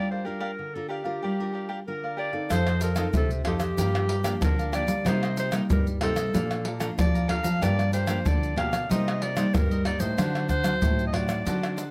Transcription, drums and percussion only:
2.50 pandeiro medium
2.50 tamborim medium
2.50 shaker medium
2.50 surdo medium
2.67 pandeiro soft
2.67 tamborim medium
2.67 shaker soft
2.81 pandeiro medium
2.81 shaker medium
2.96 pandeiro medium
2.96 tamborim medium
2.96 shaker medium
3.14 pandeiro medium
3.14 shaker medium
3.14 surdo loud
3.31 pandeiro soft
3.31 shaker soft
3.45 pandeiro medium
3.45 tamborim medium
3.60 pandeiro medium
3.60 tamborim medium
3.60 shaker medium
3.78 pandeiro medium
3.78 shaker medium
3.78 surdo medium
3.95 pandeiro soft
3.95 tamborim medium
3.95 shaker soft
4.09 pandeiro medium
4.24 pandeiro medium
4.24 tamborim medium
4.24 shaker medium
4.42 pandeiro loud
4.42 tamborim medium
4.42 shaker medium
4.42 surdo loud
4.59 pandeiro soft
4.59 shaker soft
4.73 pandeiro medium
4.73 tamborim medium
4.73 shaker medium
4.88 pandeiro medium
4.88 shaker medium
5.06 pandeiro medium
5.06 tamborim medium
5.06 shaker medium
5.06 surdo medium
5.23 pandeiro soft
5.23 tamborim medium
5.23 shaker soft
5.37 pandeiro medium
5.37 shaker medium
5.52 pandeiro medium
5.52 tamborim medium
5.52 shaker medium
5.70 pandeiro medium
5.70 shaker medium
5.70 surdo loud
5.87 pandeiro soft
5.87 shaker soft
6.01 pandeiro medium
6.01 tamborim medium
6.16 pandeiro medium
6.16 tamborim medium
6.16 shaker medium
6.34 pandeiro medium
6.34 shaker medium
6.34 surdo medium
6.51 pandeiro soft
6.51 tamborim medium
6.51 shaker soft
6.65 pandeiro medium
6.80 pandeiro medium
6.80 tamborim medium
6.80 shaker medium
6.99 pandeiro medium
6.99 tamborim medium
6.99 shaker loud
6.99 surdo loud
7.15 pandeiro soft
7.15 shaker soft
7.29 pandeiro medium
7.29 tamborim medium
7.44 pandeiro medium
7.44 shaker medium
7.62 pandeiro medium
7.62 tamborim medium
7.62 shaker medium
7.62 surdo medium
7.79 pandeiro soft
7.79 tamborim medium
7.79 shaker soft
7.93 pandeiro medium
7.93 shaker medium
8.07 pandeiro medium
8.07 tamborim medium
8.07 shaker medium
8.26 pandeiro medium
8.26 shaker medium
8.26 surdo loud
8.43 pandeiro soft
8.43 shaker soft
8.58 pandeiro medium
8.58 tamborim medium
8.73 pandeiro medium
8.73 tamborim medium
8.73 shaker medium
8.91 pandeiro medium
8.91 shaker medium
8.91 surdo medium
9.08 pandeiro soft
9.08 tamborim medium
9.08 shaker soft
9.22 pandeiro medium
9.37 pandeiro medium
9.37 tamborim medium
9.37 shaker medium
9.55 pandeiro medium
9.55 tamborim medium
9.55 shaker medium
9.55 surdo loud
9.71 pandeiro soft
9.71 shaker soft
9.85 pandeiro medium
9.85 tamborim medium
10.00 pandeiro medium
10.00 shaker medium
10.18 pandeiro medium
10.18 tamborim medium
10.18 shaker medium
10.18 surdo medium
10.35 pandeiro soft
10.35 tamborim medium
10.35 shaker soft
10.49 pandeiro medium
10.49 shaker medium
10.49 surdo medium
10.64 pandeiro medium
10.64 tamborim medium
10.64 shaker medium
10.82 pandeiro medium
10.82 shaker medium
10.82 surdo loud
10.99 pandeiro soft
10.99 shaker soft
11.14 pandeiro medium
11.14 tamborim medium
11.29 pandeiro medium
11.29 tamborim medium
11.29 shaker medium
11.47 pandeiro medium
11.47 shaker medium
11.47 surdo medium
11.63 pandeiro soft
11.63 tamborim medium
11.63 shaker soft
11.78 pandeiro medium
11.78 shaker medium

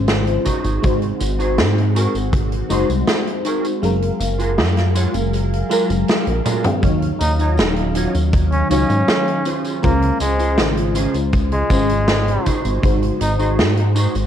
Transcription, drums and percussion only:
0.07 snare loud
0.07 closed hi-hat medium
0.07 tambourine soft
0.27 closed hi-hat soft
0.45 kick medium
0.45 closed hi-hat loud
0.45 tambourine medium
0.64 closed hi-hat medium
0.64 tambourine soft
0.83 kick loud
0.83 closed hi-hat medium
0.83 tambourine soft
1.02 closed hi-hat medium
1.20 closed hi-hat medium
1.20 tambourine medium
1.40 closed hi-hat medium
1.40 tambourine soft
1.58 snare loud
1.58 closed hi-hat medium
1.58 tambourine soft
1.78 closed hi-hat soft
1.96 closed hi-hat loud
1.96 tambourine medium
2.15 closed hi-hat medium
2.15 tambourine soft
2.33 kick loud
2.33 closed hi-hat medium
2.33 tambourine soft
2.52 closed hi-hat medium
2.70 closed hi-hat loud
2.70 tambourine medium
2.90 closed hi-hat medium
2.90 tambourine soft
3.08 snare loud
3.08 closed hi-hat medium
3.08 tambourine soft
3.27 closed hi-hat medium
3.45 closed hi-hat medium
3.45 tambourine medium
3.65 closed hi-hat medium
3.65 tambourine soft
3.83 closed hi-hat medium
3.83 tambourine soft
4.02 closed hi-hat medium
4.21 closed hi-hat medium
4.21 tambourine medium
4.40 closed hi-hat medium
4.40 tambourine soft
4.58 snare loud
4.58 closed hi-hat medium
4.58 tambourine soft
4.77 snare soft
4.77 closed hi-hat medium
4.96 closed hi-hat loud
4.96 tambourine medium
5.14 closed hi-hat medium
5.14 tambourine soft
5.33 closed hi-hat medium
5.33 tambourine soft
5.53 closed hi-hat medium
5.71 closed hi-hat loud
5.71 tambourine medium
5.90 closed hi-hat medium
5.90 tambourine soft
6.08 snare loud
6.08 closed hi-hat medium
6.08 tambourine soft
6.27 closed hi-hat medium
6.45 closed hi-hat loud
6.45 high tom medium
6.45 tambourine medium
6.64 closed hi-hat medium
6.64 mid tom medium
6.64 tambourine soft
6.83 kick loud
6.83 closed hi-hat medium
6.83 tambourine soft
7.02 closed hi-hat medium
7.21 closed hi-hat loud
7.21 tambourine medium
7.39 closed hi-hat medium
7.39 tambourine soft
7.57 snare loud
7.57 closed hi-hat medium
7.57 tambourine soft
7.76 closed hi-hat medium
7.95 closed hi-hat loud
7.95 tambourine medium
8.15 closed hi-hat medium
8.15 tambourine soft
8.33 kick loud
8.33 closed hi-hat medium
8.33 tambourine soft
8.52 closed hi-hat medium
8.71 closed hi-hat loud
8.71 tambourine medium
8.90 closed hi-hat soft
8.90 tambourine soft
9.08 snare loud
9.08 closed hi-hat medium
9.08 tambourine soft
9.28 closed hi-hat medium
9.45 closed hi-hat loud
9.45 tambourine medium
9.64 closed hi-hat medium
9.64 tambourine soft
9.83 kick loud
9.83 closed hi-hat medium
9.83 tambourine soft
10.02 closed hi-hat medium
10.20 closed hi-hat medium
10.20 tambourine medium
10.39 closed hi-hat medium
10.39 tambourine soft
10.58 snare loud
10.58 closed hi-hat medium
10.58 tambourine soft
10.77 closed hi-hat medium
10.95 closed hi-hat loud
10.95 tambourine medium
11.14 closed hi-hat medium
11.14 tambourine soft
11.33 kick loud
11.33 closed hi-hat medium
11.33 tambourine soft
11.52 closed hi-hat medium
11.70 kick loud
11.70 closed hi-hat loud
11.70 tambourine medium
11.89 closed hi-hat medium
11.89 tambourine soft
12.08 snare loud
12.08 closed hi-hat medium
12.08 tambourine soft
12.28 closed hi-hat medium
12.46 kick medium
12.46 closed hi-hat loud
12.46 tambourine medium
12.65 closed hi-hat medium
12.65 tambourine soft
12.83 kick loud
12.83 closed hi-hat medium
12.83 tambourine soft
13.03 closed hi-hat medium
13.21 closed hi-hat loud
13.21 tambourine medium
13.39 closed hi-hat medium
13.39 tambourine soft
13.59 snare loud
13.59 closed hi-hat medium
13.59 tambourine soft
13.77 closed hi-hat medium
13.96 closed hi-hat loud
13.96 tambourine medium
14.15 closed hi-hat medium
14.15 tambourine soft

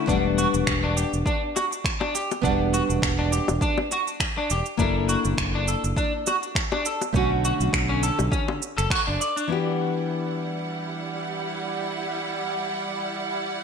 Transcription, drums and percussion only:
0.08 kick medium
0.08 shaker soft
0.38 shaker medium
0.54 shaker soft
0.67 finger snap medium
0.67 kick loud
0.67 shaker soft
0.97 shaker medium
1.13 shaker soft
1.26 kick loud
1.26 shaker soft
1.56 high bongo medium
1.56 shaker medium
1.73 shaker soft
1.85 finger snap medium
1.85 kick loud
1.85 shaker soft
2.01 high bongo medium
2.15 shaker medium
2.31 high bongo medium
2.31 shaker soft
2.43 kick medium
2.43 shaker soft
2.74 shaker medium
2.90 shaker soft
3.02 finger snap medium
3.02 kick medium
3.02 shaker soft
3.33 shaker medium
3.48 high bongo medium
3.48 shaker soft
3.61 kick loud
3.61 shaker soft
3.78 high bongo medium
3.91 shaker medium
4.07 shaker soft
4.20 finger snap medium
4.20 kick medium
4.20 shaker soft
4.50 shaker medium
4.66 shaker soft
4.79 kick medium
4.79 shaker soft
5.09 shaker medium
5.25 shaker soft
5.38 finger snap loud
5.38 kick medium
5.38 shaker soft
5.68 shaker medium
5.84 shaker soft
5.97 kick loud
5.97 shaker soft
6.27 high bongo medium
6.27 shaker medium
6.43 shaker soft
6.55 finger snap medium
6.55 kick medium
6.55 shaker soft
6.72 high bongo medium
6.86 shaker medium
7.01 high bongo medium
7.01 shaker soft
7.14 kick loud
7.14 shaker soft
7.45 shaker medium
7.61 shaker soft
7.73 finger snap loud
7.73 kick loud
7.73 shaker soft
8.03 shaker medium
8.19 high bongo medium
8.19 shaker soft
8.32 kick loud
8.32 shaker soft
8.48 high bongo medium
8.62 shaker medium
8.78 finger snap soft
8.78 shaker soft
8.90 finger snap loud
8.90 kick loud
8.90 shaker soft
9.21 shaker medium
9.37 shaker soft
9.80 shaker medium

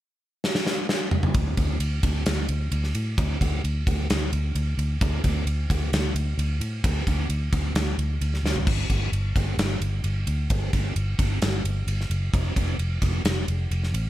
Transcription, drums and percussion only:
0.44 snare medium
0.55 snare medium
0.67 snare medium
0.89 snare medium
1.11 mid tom loud
1.23 mid tom loud
1.34 kick loud
1.34 ride loud
1.57 kick medium
1.57 ride medium
1.80 ride loud
2.03 kick loud
2.03 ride medium
2.26 snare loud
2.26 ride loud
2.49 ride medium
2.72 ride loud
2.84 snare soft
2.95 ride medium
3.18 kick loud
3.18 ride loud
3.41 kick medium
3.41 ride medium
3.65 ride medium
3.87 kick medium
3.87 ride medium
4.10 snare loud
4.10 ride medium
4.33 ride medium
4.56 ride medium
4.79 ride medium
5.01 kick loud
5.01 ride loud
5.24 kick medium
5.24 ride medium
5.47 ride medium
5.70 kick medium
5.70 ride medium
5.93 snare loud
5.93 ride loud
6.16 ride medium
6.39 ride loud
6.61 ride medium
6.84 kick loud
6.84 ride loud
7.07 kick medium
7.07 ride medium
7.30 ride loud
7.53 kick medium
7.53 ride medium
7.75 snare loud
7.75 ride loud
7.99 ride medium
8.21 ride medium
8.34 snare soft
8.46 snare medium
8.56 floor tom medium
8.67 kick loud
8.67 crash loud
8.90 kick medium
8.90 ride medium
9.13 ride medium
9.36 kick medium
9.36 ride medium
9.59 snare loud
9.59 ride loud
9.82 ride medium
10.04 ride medium
10.27 ride medium
10.50 kick loud
10.50 ride loud
10.73 kick medium
10.73 ride medium
10.96 ride medium
11.19 kick medium
11.19 ride medium
11.42 snare loud
11.42 ride loud
11.65 ride medium
11.88 ride loud
12.01 snare soft
12.11 ride medium
12.34 kick loud
12.34 ride loud
12.56 kick medium
12.56 ride medium
12.79 ride medium
13.02 kick medium
13.02 ride medium
13.25 snare loud
13.25 ride loud
13.48 ride medium
13.71 ride medium
13.84 snare soft
13.94 ride medium

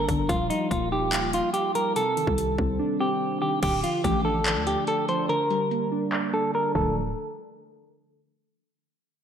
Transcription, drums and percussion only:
0.09 kick loud
0.09 closed hi-hat medium
0.29 kick loud
0.29 closed hi-hat medium
0.50 closed hi-hat medium
0.71 kick medium
0.71 closed hi-hat medium
1.13 clap loud
1.13 closed hi-hat medium
1.33 closed hi-hat medium
1.54 closed hi-hat medium
1.75 closed hi-hat medium
1.96 closed hi-hat medium
2.17 closed hi-hat medium
2.27 kick medium
2.38 closed hi-hat medium
2.58 kick medium
3.63 kick loud
3.63 closed hi-hat medium
3.63 crash loud
3.84 closed hi-hat medium
4.04 kick medium
4.04 closed hi-hat medium
4.46 clap loud
4.46 closed hi-hat medium
4.67 closed hi-hat medium
4.87 closed hi-hat medium
5.09 closed hi-hat medium
5.29 closed hi-hat medium
5.50 closed hi-hat medium
5.71 closed hi-hat medium
6.13 clap loud
6.13 closed hi-hat medium
6.33 closed hi-hat medium
6.54 closed hi-hat medium
6.75 kick loud
6.75 crash medium

